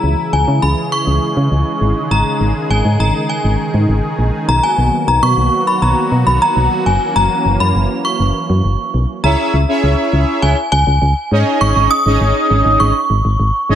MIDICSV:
0, 0, Header, 1, 5, 480
1, 0, Start_track
1, 0, Tempo, 594059
1, 1704, Time_signature, 4, 2, 24, 8
1, 11111, End_track
2, 0, Start_track
2, 0, Title_t, "Synth bell"
2, 0, Program_c, 0, 98
2, 0, Note_on_c, 0, 82, 92
2, 267, Note_on_c, 0, 80, 83
2, 279, Note_off_c, 0, 82, 0
2, 504, Note_on_c, 0, 83, 89
2, 513, Note_off_c, 0, 80, 0
2, 728, Note_off_c, 0, 83, 0
2, 745, Note_on_c, 0, 85, 98
2, 1707, Note_on_c, 0, 82, 91
2, 1733, Note_off_c, 0, 85, 0
2, 2186, Note_on_c, 0, 80, 82
2, 2200, Note_off_c, 0, 82, 0
2, 2293, Note_off_c, 0, 80, 0
2, 2425, Note_on_c, 0, 82, 83
2, 2648, Note_off_c, 0, 82, 0
2, 2662, Note_on_c, 0, 80, 77
2, 3351, Note_off_c, 0, 80, 0
2, 3625, Note_on_c, 0, 82, 100
2, 3679, Note_off_c, 0, 82, 0
2, 3745, Note_on_c, 0, 80, 91
2, 4105, Note_on_c, 0, 82, 103
2, 4115, Note_off_c, 0, 80, 0
2, 4216, Note_off_c, 0, 82, 0
2, 4224, Note_on_c, 0, 85, 111
2, 4584, Note_on_c, 0, 83, 98
2, 4595, Note_off_c, 0, 85, 0
2, 4638, Note_off_c, 0, 83, 0
2, 4704, Note_on_c, 0, 82, 95
2, 5063, Note_on_c, 0, 83, 97
2, 5075, Note_off_c, 0, 82, 0
2, 5186, Note_on_c, 0, 82, 100
2, 5187, Note_off_c, 0, 83, 0
2, 5520, Note_off_c, 0, 82, 0
2, 5545, Note_on_c, 0, 80, 93
2, 5784, Note_on_c, 0, 82, 96
2, 5792, Note_off_c, 0, 80, 0
2, 6143, Note_on_c, 0, 83, 98
2, 6155, Note_off_c, 0, 82, 0
2, 6479, Note_off_c, 0, 83, 0
2, 6502, Note_on_c, 0, 85, 91
2, 7191, Note_off_c, 0, 85, 0
2, 7464, Note_on_c, 0, 82, 91
2, 8392, Note_off_c, 0, 82, 0
2, 8423, Note_on_c, 0, 80, 89
2, 8647, Note_off_c, 0, 80, 0
2, 8661, Note_on_c, 0, 80, 96
2, 9380, Note_on_c, 0, 85, 109
2, 9405, Note_off_c, 0, 80, 0
2, 9620, Note_on_c, 0, 87, 113
2, 9630, Note_off_c, 0, 85, 0
2, 10342, Note_on_c, 0, 85, 95
2, 10364, Note_off_c, 0, 87, 0
2, 11031, Note_off_c, 0, 85, 0
2, 11111, End_track
3, 0, Start_track
3, 0, Title_t, "Analog polysynth"
3, 0, Program_c, 1, 90
3, 7465, Note_on_c, 1, 61, 78
3, 7465, Note_on_c, 1, 68, 71
3, 7466, Note_on_c, 1, 64, 72
3, 7466, Note_on_c, 1, 73, 69
3, 7466, Note_on_c, 1, 76, 88
3, 7730, Note_off_c, 1, 61, 0
3, 7730, Note_off_c, 1, 68, 0
3, 7730, Note_off_c, 1, 73, 0
3, 7730, Note_off_c, 1, 76, 0
3, 7731, Note_off_c, 1, 64, 0
3, 7825, Note_on_c, 1, 61, 78
3, 7825, Note_on_c, 1, 64, 68
3, 7825, Note_on_c, 1, 68, 69
3, 7825, Note_on_c, 1, 73, 69
3, 7825, Note_on_c, 1, 76, 85
3, 8532, Note_off_c, 1, 61, 0
3, 8532, Note_off_c, 1, 64, 0
3, 8532, Note_off_c, 1, 68, 0
3, 8532, Note_off_c, 1, 73, 0
3, 8532, Note_off_c, 1, 76, 0
3, 9145, Note_on_c, 1, 63, 79
3, 9145, Note_on_c, 1, 68, 77
3, 9145, Note_on_c, 1, 73, 78
3, 9145, Note_on_c, 1, 75, 93
3, 9146, Note_on_c, 1, 61, 83
3, 9624, Note_off_c, 1, 63, 0
3, 9625, Note_off_c, 1, 61, 0
3, 9625, Note_off_c, 1, 68, 0
3, 9625, Note_off_c, 1, 73, 0
3, 9625, Note_off_c, 1, 75, 0
3, 9745, Note_on_c, 1, 68, 71
3, 9745, Note_on_c, 1, 75, 86
3, 9746, Note_on_c, 1, 61, 76
3, 9746, Note_on_c, 1, 63, 70
3, 9746, Note_on_c, 1, 73, 71
3, 10452, Note_off_c, 1, 75, 0
3, 10453, Note_off_c, 1, 61, 0
3, 10453, Note_off_c, 1, 63, 0
3, 10453, Note_off_c, 1, 68, 0
3, 10453, Note_off_c, 1, 73, 0
3, 11065, Note_on_c, 1, 73, 85
3, 11066, Note_on_c, 1, 61, 94
3, 11066, Note_on_c, 1, 63, 88
3, 11066, Note_on_c, 1, 75, 105
3, 11067, Note_on_c, 1, 68, 84
3, 11111, Note_off_c, 1, 61, 0
3, 11111, Note_off_c, 1, 63, 0
3, 11111, Note_off_c, 1, 68, 0
3, 11111, Note_off_c, 1, 73, 0
3, 11111, Note_off_c, 1, 75, 0
3, 11111, End_track
4, 0, Start_track
4, 0, Title_t, "Analog synth pad"
4, 0, Program_c, 2, 89
4, 0, Note_on_c, 2, 49, 84
4, 0, Note_on_c, 2, 52, 78
4, 0, Note_on_c, 2, 56, 79
4, 0, Note_on_c, 2, 64, 79
4, 0, Note_on_c, 2, 68, 90
4, 1432, Note_off_c, 2, 64, 0
4, 1448, Note_off_c, 2, 52, 0
4, 1448, Note_off_c, 2, 68, 0
4, 1461, Note_on_c, 2, 51, 78
4, 1462, Note_on_c, 2, 63, 80
4, 1462, Note_on_c, 2, 68, 90
4, 3592, Note_off_c, 2, 49, 0
4, 3592, Note_off_c, 2, 56, 0
4, 3601, Note_off_c, 2, 68, 0
4, 3602, Note_off_c, 2, 63, 0
4, 3623, Note_on_c, 2, 54, 78
4, 3623, Note_on_c, 2, 59, 77
4, 3624, Note_on_c, 2, 58, 77
4, 3624, Note_on_c, 2, 66, 92
4, 5511, Note_off_c, 2, 51, 0
4, 5525, Note_off_c, 2, 58, 0
4, 5525, Note_off_c, 2, 59, 0
4, 5542, Note_on_c, 2, 61, 77
4, 5543, Note_on_c, 2, 52, 83
4, 5543, Note_on_c, 2, 58, 79
4, 7432, Note_off_c, 2, 54, 0
4, 7432, Note_off_c, 2, 66, 0
4, 7444, Note_off_c, 2, 58, 0
4, 7444, Note_off_c, 2, 61, 0
4, 7445, Note_off_c, 2, 52, 0
4, 11111, End_track
5, 0, Start_track
5, 0, Title_t, "FM bass"
5, 0, Program_c, 3, 39
5, 27, Note_on_c, 3, 37, 91
5, 122, Note_off_c, 3, 37, 0
5, 266, Note_on_c, 3, 37, 100
5, 361, Note_off_c, 3, 37, 0
5, 386, Note_on_c, 3, 49, 96
5, 481, Note_off_c, 3, 49, 0
5, 506, Note_on_c, 3, 37, 104
5, 601, Note_off_c, 3, 37, 0
5, 865, Note_on_c, 3, 37, 100
5, 961, Note_off_c, 3, 37, 0
5, 1105, Note_on_c, 3, 49, 95
5, 1201, Note_off_c, 3, 49, 0
5, 1224, Note_on_c, 3, 37, 92
5, 1320, Note_off_c, 3, 37, 0
5, 1465, Note_on_c, 3, 32, 99
5, 1560, Note_off_c, 3, 32, 0
5, 1705, Note_on_c, 3, 32, 108
5, 1800, Note_off_c, 3, 32, 0
5, 1943, Note_on_c, 3, 32, 94
5, 2040, Note_off_c, 3, 32, 0
5, 2183, Note_on_c, 3, 32, 97
5, 2279, Note_off_c, 3, 32, 0
5, 2303, Note_on_c, 3, 44, 96
5, 2399, Note_off_c, 3, 44, 0
5, 2423, Note_on_c, 3, 32, 106
5, 2519, Note_off_c, 3, 32, 0
5, 2782, Note_on_c, 3, 32, 100
5, 2879, Note_off_c, 3, 32, 0
5, 3022, Note_on_c, 3, 44, 99
5, 3119, Note_off_c, 3, 44, 0
5, 3142, Note_on_c, 3, 32, 99
5, 3239, Note_off_c, 3, 32, 0
5, 3382, Note_on_c, 3, 34, 96
5, 3479, Note_off_c, 3, 34, 0
5, 3622, Note_on_c, 3, 35, 105
5, 3719, Note_off_c, 3, 35, 0
5, 3862, Note_on_c, 3, 35, 96
5, 3959, Note_off_c, 3, 35, 0
5, 4102, Note_on_c, 3, 35, 109
5, 4199, Note_off_c, 3, 35, 0
5, 4222, Note_on_c, 3, 47, 93
5, 4319, Note_off_c, 3, 47, 0
5, 4341, Note_on_c, 3, 35, 99
5, 4438, Note_off_c, 3, 35, 0
5, 4703, Note_on_c, 3, 35, 102
5, 4799, Note_off_c, 3, 35, 0
5, 4943, Note_on_c, 3, 47, 95
5, 5039, Note_off_c, 3, 47, 0
5, 5063, Note_on_c, 3, 35, 107
5, 5160, Note_off_c, 3, 35, 0
5, 5303, Note_on_c, 3, 35, 102
5, 5399, Note_off_c, 3, 35, 0
5, 5544, Note_on_c, 3, 30, 107
5, 5640, Note_off_c, 3, 30, 0
5, 5784, Note_on_c, 3, 30, 92
5, 5880, Note_off_c, 3, 30, 0
5, 6024, Note_on_c, 3, 30, 93
5, 6120, Note_off_c, 3, 30, 0
5, 6144, Note_on_c, 3, 42, 96
5, 6240, Note_off_c, 3, 42, 0
5, 6265, Note_on_c, 3, 30, 104
5, 6360, Note_off_c, 3, 30, 0
5, 6623, Note_on_c, 3, 30, 101
5, 6720, Note_off_c, 3, 30, 0
5, 6865, Note_on_c, 3, 42, 94
5, 6961, Note_off_c, 3, 42, 0
5, 6985, Note_on_c, 3, 30, 92
5, 7081, Note_off_c, 3, 30, 0
5, 7224, Note_on_c, 3, 35, 90
5, 7320, Note_off_c, 3, 35, 0
5, 7464, Note_on_c, 3, 37, 104
5, 7560, Note_off_c, 3, 37, 0
5, 7705, Note_on_c, 3, 37, 98
5, 7801, Note_off_c, 3, 37, 0
5, 7945, Note_on_c, 3, 37, 100
5, 8041, Note_off_c, 3, 37, 0
5, 8185, Note_on_c, 3, 37, 103
5, 8280, Note_off_c, 3, 37, 0
5, 8424, Note_on_c, 3, 37, 105
5, 8520, Note_off_c, 3, 37, 0
5, 8663, Note_on_c, 3, 37, 111
5, 8759, Note_off_c, 3, 37, 0
5, 8784, Note_on_c, 3, 37, 109
5, 8880, Note_off_c, 3, 37, 0
5, 8902, Note_on_c, 3, 37, 106
5, 8999, Note_off_c, 3, 37, 0
5, 9143, Note_on_c, 3, 44, 96
5, 9239, Note_off_c, 3, 44, 0
5, 9382, Note_on_c, 3, 32, 103
5, 9479, Note_off_c, 3, 32, 0
5, 9502, Note_on_c, 3, 32, 96
5, 9599, Note_off_c, 3, 32, 0
5, 9744, Note_on_c, 3, 32, 105
5, 9840, Note_off_c, 3, 32, 0
5, 9863, Note_on_c, 3, 32, 108
5, 9959, Note_off_c, 3, 32, 0
5, 10104, Note_on_c, 3, 32, 108
5, 10200, Note_off_c, 3, 32, 0
5, 10224, Note_on_c, 3, 32, 94
5, 10320, Note_off_c, 3, 32, 0
5, 10345, Note_on_c, 3, 32, 112
5, 10441, Note_off_c, 3, 32, 0
5, 10584, Note_on_c, 3, 32, 100
5, 10680, Note_off_c, 3, 32, 0
5, 10705, Note_on_c, 3, 32, 98
5, 10801, Note_off_c, 3, 32, 0
5, 10824, Note_on_c, 3, 32, 100
5, 10920, Note_off_c, 3, 32, 0
5, 11065, Note_on_c, 3, 32, 112
5, 11111, Note_off_c, 3, 32, 0
5, 11111, End_track
0, 0, End_of_file